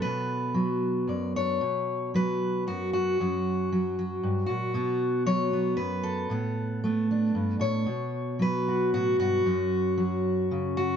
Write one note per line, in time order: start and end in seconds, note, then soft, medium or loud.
0.00 0.53 F#3 medium
0.00 1.62 B3 soft
0.00 0.53 A4 medium
0.00 1.09 B4 medium
0.05 1.09 B2 medium
0.54 2.13 F#3 medium
1.07 1.61 F#2 soft
1.07 1.36 D5 soft
1.36 1.62 D4 soft
1.36 2.15 C#5 medium
1.61 2.66 B2 medium
2.14 3.21 F#3 medium
2.14 2.67 B4 medium
2.67 3.18 F#2 medium
2.67 2.92 F#4 medium
2.93 4.45 F#4 medium
3.20 4.22 F#2 medium
3.20 3.72 F#3 soft
3.72 3.98 F#3 medium
3.99 5.26 F#3 soft
4.23 4.48 G2 medium
4.46 4.74 A#2 medium
4.46 5.25 F#4 medium
4.74 5.78 B2 medium
4.74 5.52 B3 soft
5.26 6.30 F#3 medium
5.26 5.76 C#5 medium
5.53 6.31 B3 soft
5.77 6.29 F#2 medium
5.77 6.29 B4 medium
6.03 7.08 A4 medium
6.30 7.34 A2 medium
6.30 6.84 B3 soft
6.84 7.85 A3 medium
6.84 9.46 B3 soft
7.11 7.89 D4 soft
7.35 7.59 G2 medium
7.59 7.87 A2 medium
7.59 8.40 C#5 medium
7.86 9.45 B2 medium
8.39 9.97 F#3 medium
8.39 8.94 B4 medium
8.68 8.94 F#4 soft
8.94 9.18 A2 medium
8.94 9.18 F#4 medium
9.19 9.45 G2 medium
9.19 10.76 F#4 medium
9.46 10.97 F#2 medium
9.46 10.97 C#4 soft
9.98 10.97 F#3 medium
10.51 10.97 C#3 medium
10.77 10.97 F#4 medium